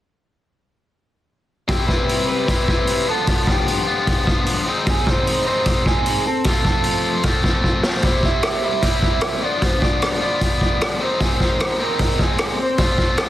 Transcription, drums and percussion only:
1.69 kick, open hi-hat
1.89 kick
2.09 open hi-hat
2.48 kick, open hi-hat
2.68 kick
2.87 open hi-hat
3.27 kick, open hi-hat
3.47 kick
3.68 open hi-hat
4.07 kick, open hi-hat
4.27 kick
4.46 open hi-hat
4.87 kick, open hi-hat
5.07 kick
5.27 open hi-hat
5.66 kick, open hi-hat
5.86 kick
6.06 open hi-hat
6.44 kick, open hi-hat
6.65 kick
6.84 open hi-hat
7.23 kick, open hi-hat
7.44 kick
7.64 kick
7.83 snare
8.02 kick, open hi-hat
8.23 kick
8.43 cross-stick, open hi-hat
8.82 kick, open hi-hat
9.02 kick
9.21 cross-stick, open hi-hat
9.62 kick, open hi-hat
9.82 kick
10.02 cross-stick, open hi-hat
10.41 kick, open hi-hat
10.61 kick
10.81 cross-stick, open hi-hat
11.21 kick, open hi-hat
11.40 kick
11.60 cross-stick, open hi-hat
11.99 kick, open hi-hat
12.19 kick
12.38 cross-stick, open hi-hat
12.78 kick, open hi-hat
12.98 kick
13.18 cross-stick, open hi-hat

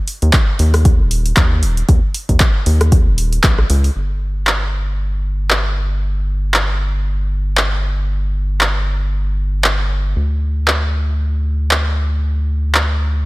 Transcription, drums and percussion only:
0.08 open hi-hat
0.22 closed hi-hat
0.33 kick, clap, closed hi-hat
0.59 open hi-hat
0.74 cross-stick, open hi-hat
0.85 kick, closed hi-hat
1.11 open hi-hat
1.26 closed hi-hat
1.37 kick, clap, closed hi-hat
1.63 open hi-hat
1.77 closed hi-hat
1.89 kick, closed hi-hat
2.14 open hi-hat
2.29 kick, closed hi-hat
2.40 kick, clap, closed hi-hat
2.66 open hi-hat
2.81 cross-stick, closed hi-hat
2.92 kick, closed hi-hat
3.18 open hi-hat
3.33 closed hi-hat
3.44 kick, clap, closed hi-hat
3.58 cross-stick
3.70 open hi-hat
3.84 open hi-hat
4.47 clap
5.50 clap
6.54 clap
7.57 clap
8.61 clap
9.64 clap
10.68 clap
11.71 clap
12.74 clap

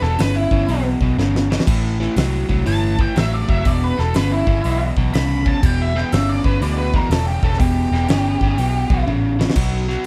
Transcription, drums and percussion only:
0.03 snare
0.19 snare, open hi-hat
0.51 kick
0.68 open hi-hat
1.01 kick
1.19 snare
1.36 snare
1.52 snare
1.60 snare
1.67 kick, crash
2.02 snare
2.16 snare, open hi-hat
2.49 kick
2.66 open hi-hat
2.99 kick
3.16 snare, open hi-hat
3.49 kick
3.65 kick, open hi-hat
4.00 snare
4.14 snare, open hi-hat
4.47 kick
4.64 open hi-hat
4.97 kick
5.14 snare, open hi-hat
5.46 kick
5.63 kick, crash
5.98 snare
6.12 snare, open hi-hat
6.44 kick
6.62 open hi-hat
6.94 kick
7.11 snare, open hi-hat
7.43 kick
7.53 snare
7.60 kick, open hi-hat
7.94 snare
8.08 snare, open hi-hat
8.41 kick
8.58 open hi-hat
8.90 kick
9.08 high tom
9.41 snare
9.50 snare
9.56 kick, crash
9.90 snare

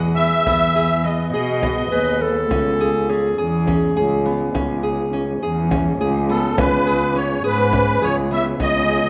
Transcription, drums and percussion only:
0.46 frame drum
1.05 frame drum
1.34 frame drum
1.63 frame drum
1.92 frame drum
2.51 frame drum
2.81 frame drum
3.67 frame drum
4.55 frame drum
4.84 frame drum
5.71 frame drum
6.58 frame drum
6.87 frame drum
7.73 frame drum
8.60 frame drum

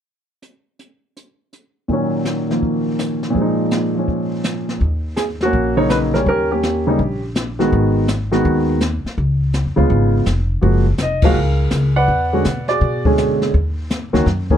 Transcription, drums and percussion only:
0.42 closed hi-hat
0.79 closed hi-hat
1.17 closed hi-hat
1.53 closed hi-hat
1.89 brush sweep, kick
2.25 snare, hi-hat pedal
2.51 snare
2.63 brush sweep, kick
2.99 snare, hi-hat pedal
3.23 snare
3.35 brush sweep, kick
3.71 snare, hi-hat pedal
4.08 brush sweep, kick
4.44 snare, hi-hat pedal
4.69 snare
4.81 brush sweep, kick
5.17 snare, hi-hat pedal
5.41 snare
5.53 brush sweep, kick
5.90 snare, hi-hat pedal
6.14 snare
6.26 brush sweep, kick
6.63 snare, hi-hat pedal
6.99 brush sweep, kick
7.35 snare, hi-hat pedal
7.60 snare
7.72 brush sweep, kick
8.08 snare, hi-hat pedal
8.33 snare
8.45 brush sweep, kick
8.81 snare, hi-hat pedal
9.06 snare
9.18 brush sweep, kick
9.54 snare, hi-hat pedal
9.90 brush sweep, kick
10.26 snare, hi-hat pedal
10.63 brush sweep, kick
10.98 snare, hi-hat pedal
11.22 kick, ride
11.34 brush sweep
11.70 snare, hi-hat pedal
12.08 brush sweep, kick
12.44 snare, hi-hat pedal
12.68 snare
12.81 brush sweep, kick
13.05 kick
13.18 snare, hi-hat pedal
13.42 snare
13.54 brush sweep, kick
13.90 snare, hi-hat pedal
14.15 snare
14.27 brush sweep, kick, snare
14.50 kick

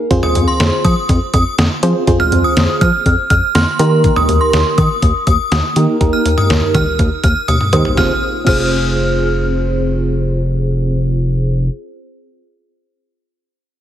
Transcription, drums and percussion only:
0.11 kick, closed hi-hat
0.23 mid tom
0.35 closed hi-hat
0.60 snare, closed hi-hat
0.85 kick, closed hi-hat
1.09 kick, closed hi-hat
1.34 kick, closed hi-hat
1.58 snare, closed hi-hat
1.83 closed hi-hat
2.07 kick, closed hi-hat
2.20 mid tom
2.32 closed hi-hat
2.57 snare, closed hi-hat
2.81 kick, closed hi-hat
3.06 kick, closed hi-hat
3.30 kick, closed hi-hat
3.55 snare, closed hi-hat
3.79 closed hi-hat
4.04 kick, closed hi-hat
4.16 mid tom
4.29 closed hi-hat
4.53 snare, closed hi-hat
4.78 kick, closed hi-hat
5.02 kick, closed hi-hat
5.27 kick, closed hi-hat
5.52 snare, closed hi-hat
5.76 closed hi-hat
6.01 kick, closed hi-hat
6.26 closed hi-hat
6.38 mid tom
6.50 snare, closed hi-hat
6.74 kick, closed hi-hat, mid tom
6.99 kick, closed hi-hat
7.24 kick, closed hi-hat
7.48 closed hi-hat, high tom
7.61 mid tom
7.73 closed hi-hat, mid tom
7.85 floor tom
7.97 kick, snare
8.47 kick, crash

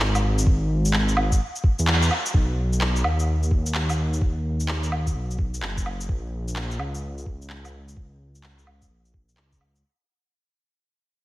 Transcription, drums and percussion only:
0.00 clap
0.15 low woodblock, shaker
0.38 shaker
0.46 kick
0.85 shaker
0.93 clap
1.09 shaker
1.17 low woodblock
1.32 kick, shaker
1.56 shaker
1.64 kick
1.79 shaker
1.87 clap
2.02 shaker
2.11 low woodblock
2.26 shaker
2.34 kick
2.73 shaker
2.81 clap
2.96 shaker
3.04 low woodblock
3.19 shaker
3.43 shaker
3.51 kick
3.66 shaker
3.75 clap
3.90 low woodblock, shaker
4.13 shaker
4.21 kick
4.60 shaker
4.68 clap
4.83 shaker
4.92 low woodblock
5.07 kick, shaker
5.31 shaker
5.39 kick
5.54 shaker
5.62 clap
5.77 kick, shaker
5.86 low woodblock
6.01 shaker
6.09 kick
6.48 shaker
6.56 clap
6.71 shaker
6.79 low woodblock
6.95 shaker
7.18 shaker
7.26 kick
7.42 shaker
7.50 clap
7.65 low woodblock, shaker
7.88 shaker
7.97 kick
8.35 shaker
8.43 clap
8.59 shaker
8.67 low woodblock
8.82 kick, shaker
9.05 shaker
9.14 kick
9.29 shaker
9.37 clap
9.52 kick, shaker
9.61 low woodblock
9.76 shaker

